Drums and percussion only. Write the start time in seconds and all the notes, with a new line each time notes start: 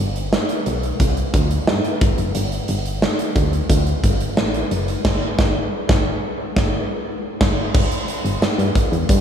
0.16 closed hi-hat
0.33 snare
0.49 closed hi-hat
0.66 closed hi-hat
0.83 closed hi-hat
1.00 kick, closed hi-hat
1.17 closed hi-hat
1.34 kick, closed hi-hat
1.51 closed hi-hat
1.67 snare
1.84 closed hi-hat
2.01 kick, closed hi-hat
2.18 closed hi-hat
2.35 closed hi-hat
2.52 closed hi-hat
2.68 closed hi-hat
2.86 closed hi-hat
3.02 snare
3.19 closed hi-hat
3.36 kick, closed hi-hat
3.53 closed hi-hat
3.70 kick, closed hi-hat
3.87 closed hi-hat
4.04 kick, closed hi-hat
4.20 closed hi-hat
4.37 snare
4.54 closed hi-hat
4.71 closed hi-hat
4.88 closed hi-hat
5.05 kick, snare, crash
5.39 kick, snare
5.89 kick, snare
6.57 kick, snare
7.41 kick, snare, crash
7.74 kick, crash
7.92 closed hi-hat
8.08 closed hi-hat
8.26 closed hi-hat
8.42 snare, tambourine
8.59 closed hi-hat
8.75 kick, closed hi-hat
8.93 closed hi-hat
9.09 kick, closed hi-hat